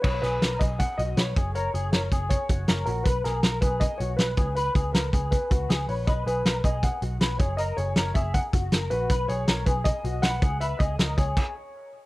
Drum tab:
CC |x-------|--------|--------|--------|
HH |-xxxxxxx|xxxxxxxx|xxxxxxxx|xxxxxxxo|
SD |-oo---o-|--o---o-|-oo---o-|--o---o-|
BD |o--oo--o|---ooo--|o--oo--o|-o-ooo--|

CC |--------|--------|--------|----x---|
HH |xxxxxxxx|xxxxxxxx|xxxxxxxx|xxxx----|
SD |--o---o-|--o---o-|--o---o-|--o-----|
BD |o--oo--o|---ooo--|o--oo--o|-o-oo---|